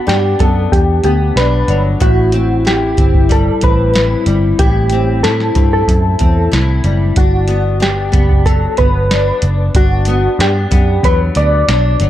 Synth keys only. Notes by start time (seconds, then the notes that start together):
Already playing: F#4
0.08 G4
0.40 A4
0.72 G4
1.04 G4
1.37 B4
2.01 F#4
2.67 G4
3.32 A4
3.64 B4
4.59 G4
5.23 A4
5.73 A4
7.17 F#4
7.82 G4
8.46 A4
8.78 B4
9.76 F#4
10.41 G4
11.05 B4
11.37 D5